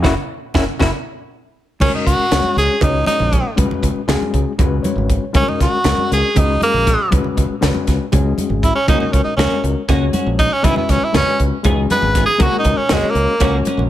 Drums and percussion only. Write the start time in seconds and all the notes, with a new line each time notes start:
0.04 kick, snare, low conga
0.54 kick, snare, low conga
0.80 kick, snare, low conga
1.80 kick, crash, high conga
1.93 low conga
2.06 kick, closed hi-hat, low conga
2.19 low conga
2.31 snare, closed hi-hat, low conga
2.44 high conga, low conga
2.56 snare, closed hi-hat, low conga
2.81 kick, closed hi-hat, low conga
3.06 snare, closed hi-hat, high conga, low conga
3.20 low conga
3.33 kick, closed hi-hat
3.58 kick, closed hi-hat, high conga
3.71 low conga
3.83 kick, closed hi-hat
3.96 low conga
4.09 snare, closed hi-hat, low conga
4.23 high conga, low conga
4.34 kick, closed hi-hat, low conga
4.59 kick, closed hi-hat, low conga
4.84 closed hi-hat, high conga, low conga
4.98 low conga
5.10 kick, closed hi-hat
5.34 kick, closed hi-hat, high conga
5.48 low conga
5.60 kick, snare, closed hi-hat
5.73 low conga
5.84 snare, closed hi-hat, low conga
5.98 high conga, low conga
6.11 snare, closed hi-hat, low conga
6.36 kick, closed hi-hat, low conga
6.61 closed hi-hat, high conga, low conga
6.74 low conga
6.87 kick, snare, closed hi-hat
7.12 kick, closed hi-hat, high conga
7.24 low conga
7.37 kick, closed hi-hat
7.62 snare, closed hi-hat, low conga
7.75 high conga
7.87 kick, snare, closed hi-hat
8.12 kick, closed hi-hat, low conga
8.38 closed hi-hat, high conga, low conga
8.50 low conga
8.63 kick, closed hi-hat
8.88 kick, closed hi-hat, high conga
9.00 low conga
9.13 kick, closed hi-hat
9.26 low conga
9.39 snare, closed hi-hat, low conga
9.51 high conga, low conga
9.63 closed hi-hat, low conga
9.89 kick, snare, closed hi-hat, low conga
10.13 closed hi-hat, high conga, low conga
10.39 kick, closed hi-hat
10.64 kick, closed hi-hat, high conga
10.76 low conga
10.89 kick, snare, closed hi-hat
11.02 low conga
11.14 snare, closed hi-hat, low conga
11.40 kick, closed hi-hat
11.64 kick, closed hi-hat, low conga
11.90 snare, closed hi-hat, high conga, low conga
12.02 low conga
12.15 kick, snare, closed hi-hat
12.40 kick, closed hi-hat, high conga
12.64 kick, closed hi-hat
12.79 low conga
12.89 snare, closed hi-hat, low conga
13.03 high conga, low conga
13.15 closed hi-hat, low conga
13.40 kick, snare, closed hi-hat, low conga
13.65 closed hi-hat, high conga, low conga
13.79 low conga